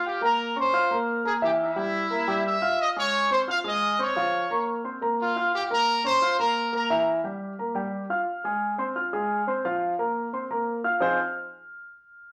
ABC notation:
X:1
M:4/4
L:1/8
Q:1/4=175
K:Fm
V:1 name="Trumpet section"
[Gg] [Bb]2 [cc']2 z2 [Aa] | [Gg] [=E=e]4- [Ee] [e=e']2 | [ee'] [dd']2 [cc'] f [ee']2 [dd']- | [dd']3 z3 [Ff]2 |
[Gg] [Bb]2 [cc']2 [Bb]2 [Bb]- | [Bb] z6 z | z8 | z8 |
z8 |]
V:2 name="Grand piano"
[Fff'] [B,Bb]2 [Ddd'] [Fff'] [B,Bb]2 [B,Bb] | [=E,=E=e]2 [G,Gg]2 [B,Bb] [G,Gg]2 [Fff']- | [Fff'] [A,Aa]2 [Ccc'] [Fff'] [A,Aa]2 [Ccc'] | [F,Ff]2 [B,Bb]2 [Ccc'] [B,Bb]2 [Fff']- |
[Fff'] [B,Bb]2 [Ddd'] [Fff'] [B,Bb]2 [B,Bb] | [=E,=E=e]2 [G,Gg]2 [B,Bb] [G,Gg]2 [Fff'] | z [A,Aa]2 [Ccc'] [Fff'] [A,Aa]2 [Ccc'] | [F,Ff]2 [B,Bb]2 [Ccc'] [B,Bb]2 [Fff'] |
[F,CEFAc] z6 z |]